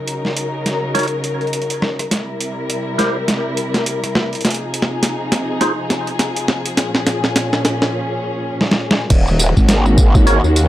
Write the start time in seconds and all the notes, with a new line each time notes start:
Already playing: C#3 F#3 D#4 A#4
0.08 closed hi-hat
0.25 snare
0.37 closed hi-hat
0.66 snare, closed hi-hat
0.95 D#4 F#4 A#4 C#5, snare, closed hi-hat
0.99 closed hi-hat
1.03 closed hi-hat
1.08 closed hi-hat
1.24 closed hi-hat
1.41 closed hi-hat
1.47 closed hi-hat
1.53 closed hi-hat
1.62 closed hi-hat
1.70 closed hi-hat
1.82 cross-stick, snare
1.99 cross-stick, closed hi-hat
2.11 C3 G3 E4 A#4, snare, closed hi-hat
2.41 closed hi-hat
2.70 closed hi-hat
2.98 E4 G4 A#4 C5, snare, closed hi-hat
3.28 snare, closed hi-hat
3.57 closed hi-hat
3.74 snare, closed hi-hat
3.86 closed hi-hat
4.04 cross-stick, closed hi-hat
4.15 cross-stick, snare
4.33 closed hi-hat
4.35 closed hi-hat
4.41 C3 F3 D#4 G#4, closed hi-hat
4.45 snare, closed hi-hat
4.51 closed hi-hat
4.54 closed hi-hat
4.74 closed hi-hat
4.82 snare
5.03 snare, closed hi-hat
5.32 snare, closed hi-hat
5.61 D#4 F4 G#4 C5, snare, closed hi-hat
5.90 snare, closed hi-hat
6.07 closed hi-hat
6.19 snare, closed hi-hat
6.36 closed hi-hat
6.48 snare
6.66 closed hi-hat
6.77 A#2 C#4, snare, closed hi-hat
6.95 snare
7.07 snare, closed hi-hat
7.24 snare
7.36 snare, closed hi-hat
7.53 snare
7.65 snare, closed hi-hat
7.82 snare
8.61 snare
8.71 snare
8.91 snare
9.10 D#1 D#3 A#3 C#4 F#4, kick, closed hi-hat, crash, tambourine
9.28 tambourine
9.39 closed hi-hat, tambourine
9.57 G#1, kick, tambourine
9.69 snare, closed hi-hat, tambourine
9.86 tambourine
9.98 kick, tambourine
10.15 kick, tambourine
10.27 D#4 F#4 A#4 C#5, closed hi-hat, tambourine
10.44 D#2, tambourine
10.56 closed hi-hat, tambourine